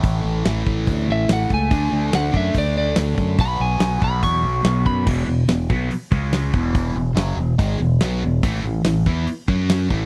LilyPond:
<<
  \new Staff \with { instrumentName = "Lead electric guitar" } { \time 4/4 \key b \dorian \tempo 4 = 143 r2 r8 e''8 fis''8 gis''8~ | gis''4 fis''8 e''8 d''8 d''8 r4 | b''8 gis''4 b''8 cis'''4. b''8 | \key e \major r1 |
r1 | r1 | }
  \new Staff \with { instrumentName = "Overdriven electric guitar" } { \clef bass \time 4/4 \key b \dorian <a, e a>4 <a, e a>2~ <a, e a>8 r8 | <d a d'>4. <d a d'>2~ <d a d'>8 | <b, fis b>4. <b, fis b>2~ <b, fis b>8 | \key e \major <e, b, e>8 <e, b,>8 <e, b,>8 <b, fis b>8 r8 <cis gis cis'>4 <e, b, e>8~ |
<e, b, e>8 <e, b,>8 <fis, cis fis>8 <e, b,>8 <gis, dis gis>8 <e, b,>8 <b, fis b>8 <e, b,>8 | <a, e a>8 <a, e>8 <a, e>8 <e b e'>8 r8 <fis cis' fis'>4 <a, e a>8 | }
  \new Staff \with { instrumentName = "Fingered electric bass" } { \clef bass \time 4/4 \key b \dorian a,,8 a,,8 a,,8 a,,8 d,8 a,,8 a,,8 cis,8 | d,8 d,8 d,8 fis,8 d,4 d,8 fis,8 | b,,8 b,,8 b,,8 b,,8 e,8 b,,8 b,,8 fis,8 | \key e \major e,,8 e,,8 e,,8 b,,8 r8 cis,4 e,,8~ |
e,,8 e,,8 fis,,8 e,,8 gis,,8 e,,8 b,,8 e,,8 | a,,8 a,,8 a,,8 e,8 r8 fis,4 a,,8 | }
  \new DrumStaff \with { instrumentName = "Drums" } \drummode { \time 4/4 <hho bd>4 <hho sn>8 bd8 <hho bd>4 <hho sn>8 bd8 | <hho bd>4 <hho sn>8 bd8 <hho bd>4 <hho sn>8 bd8 | <hho bd>4 <hho sn>8 bd8 <hho bd>4 <hho sn>8 bd8 | <cymc bd>4 <hho sn>8 bd8 hho8 bd8 <hho sn>8 bd8 |
<hho bd>4 <hho sn>4 <hho bd>4 <hho sn>4 | <hho bd>4 <hho sn>8 bd8 hho8 bd8 <hho sn>8 bd8 | }
>>